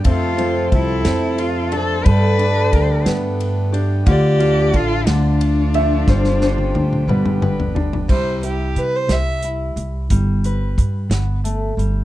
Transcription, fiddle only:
\new Staff \with { instrumentName = "Fiddle" } { \time 6/8 \key c \major \tempo 4. = 60 a'4 a'4 a'8 c''8 | d''4. r4. | d''4 a'8 f'4.~ | f'2 r4 |
c''8 g'8 b'16 c''16 e''8 r4 | r2. | }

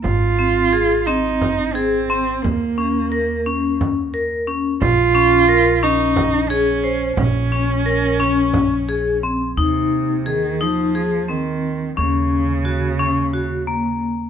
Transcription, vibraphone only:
\new Staff \with { instrumentName = "Vibraphone" } { \time 7/8 \key f \phrygian \tempo 4 = 88 r8 c'8 aes'8 c'4 aes'8 c'8 | r8 des'8 bes'8 des'4 bes'8 des'8 | r8 des'8 bes'8 des'4 aes'8 c''8 | r8 des'8 bes'8 des'4 aes'8 c'8 |
ees'4 aes'8 ees'8 aes'8 c'4 | des'4 ges'8 des'8 ges'8 bes4 | }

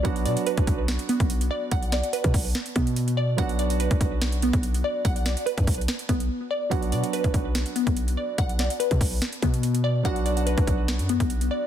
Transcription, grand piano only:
\new Staff \with { instrumentName = "Grand piano" } { \time 4/4 \key b \minor \tempo 4 = 144 <fis b d' fis'>1~ | <fis b d' fis'>1 | <fis b d' fis'>1~ | <fis b d' fis'>1 |
<fis b d' fis'>1~ | <fis b d' fis'>1 | <fis b d' fis'>1 | }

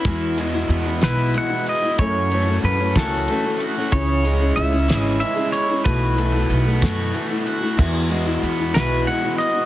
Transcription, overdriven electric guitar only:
\new Staff \with { instrumentName = "Overdriven electric guitar" } { \time 6/8 \key e \major \tempo 4. = 62 e,8 gis8 b8 e'8 gis8 e'8 | fis,8 a8 cis'8 fis'8 a8 fis'8 | cis8 gis8 cis'8 e'8 gis8 e'8 | b,8 a8 b8 fis'8 a8 fis'8 |
e,8 gis8 b8 fis'8 gis8 fis'8 | }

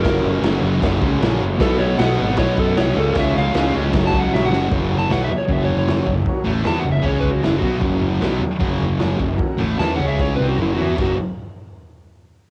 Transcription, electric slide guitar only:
\new Staff \with { instrumentName = "Electric slide guitar" } { \time 4/4 \key fis \major \tempo 4 = 154 ais'4 r2. | a'8 cis''8 fis''4 cis''8 a'8 cis''8 a'8 | e''8 eis''4 r8 \tuplet 3/2 { r8 a''8 fis''8 e''8 fis''4 } | \tuplet 3/2 { r4 a''8 fis''8 e''8 cis''8 e''8 cis''8 cis''8~ } cis''8 r8 |
r4 \tuplet 3/2 { a''8 fis''8 e''8 cis''8 b'8 fis'8 e'8 fis'8. r16 } | r1 | r4 \tuplet 3/2 { a''8 fis''8 e''8 cis''8 b'8 fis'8 e'8 fis'8. r16 } | fis'8 r2. r8 | }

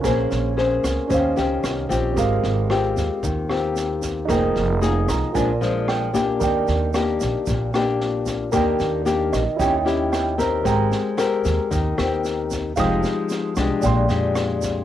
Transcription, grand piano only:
\new Staff \with { instrumentName = "Grand piano" } { \time 4/4 \key ees \major \tempo 4 = 113 << { r1 | r1 | r4. bes''8 aes''4 g''4 | r1 |
r4. ees''8 g''4 g''8 bes''8 | r1 | r1 | } \\ { <des' bes' c'' aes''>2 <des' g' c'' f''>2 | <c' g' bes' f''>1 | <ees' aes' bes' g''>2 <f' bes' d'' aes''>2 | <bes' d'' g''>1 |
<bes' d'' g''>2 <fes' des'' ees'' g''>2 | <c'' g'' bes''>1 | <f'' g'' ees'''>2 <d'' g'' c'''>2 | } >> }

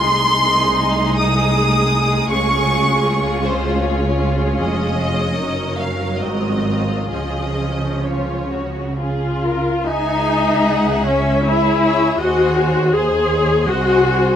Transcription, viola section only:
\new Staff \with { instrumentName = "Viola section" } { \time 3/4 \key des \major \tempo 4 = 77 << { ees'2. | des'2.~ | des'2 c'4 | des'2 f'4 |
\key cis \minor dis'4. cis'8 e'4 | fis'4 gis'4 fis'4 | } \\ { aes2.~ | aes2. | aes4 ges2 | f2 r4 |
r2. | r2. | } >> }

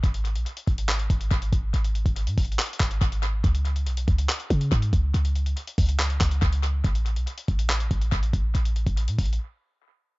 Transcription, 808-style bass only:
\new Staff \with { instrumentName = "808-style bass" } { \clef bass \time 4/4 \key cis \dorian \tempo 4 = 141 gis,,8. ais,,16 r8 gis,,4 gis,,8 gis,,8 gis,,8 | gis,,8. gis,,8 gis,16 gis,,8 r8 gis,,8 gis,,4 | cis,4 b,,8 cis,8 r8 cis8 gis,8 cis,8 | cis,4 r8 cis,4 cis,8 cis,4 |
a,,8. b,,16 r8 a,,4 a,,8 a,,8 a,,8 | a,,8. a,,8 a,16 a,,8 r2 | }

